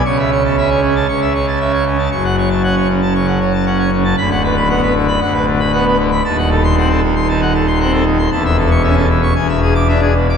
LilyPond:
<<
  \new Staff \with { instrumentName = "Pipe organ" } { \time 4/4 \key a \major \tempo 4 = 116 cis'''16 e''16 cis''16 a''16 e''16 cis''16 cis'16 a''16 cis'''16 e''16 cis''16 a''16 e''16 cis''16 cis'16 a''16 | cis'''16 fis''16 cis''16 a''16 fis''16 cis''16 cis16 a''16 cis'''16 fis''16 cis''16 a''16 fis''16 cis''16 cis16 a''16 | b''16 fis''16 b'16 b''16 fis''16 b'16 d16 b''16 fis''16 b'16 d16 b''16 fis''16 b'16 d16 b''16 | a''16 fis''16 a'16 bis''16 fis''16 a'16 dis16 bis''16 a''16 fis''16 a'16 bis''16 fis''16 a'16 dis16 bis''16 |
a''16 e''16 a'16 cis'''16 e''16 a'16 e16 cis'''16 gis''16 e''16 gis'16 d'''16 e''16 gis'16 b,16 d'''16 | }
  \new Staff \with { instrumentName = "Pipe organ" } { \clef bass \time 4/4 \key a \major << { cis4 cis'8 r8 cis4 cis'8 r8 | fis,4 cis'8 r8 cis8 r8 cis'8 r8 | d,4 b8 r8 d,4 b8 r8 | dis,4 bis8 r8 dis8 r8 bis8 r8 |
e,4 cis'8 r8 e,4 d'8 r8 | } \\ { cis,2 cis,2 | fis,,1 | d,,2 d,,2 | dis,,1 |
e,,2 e,,2 | } >> }
>>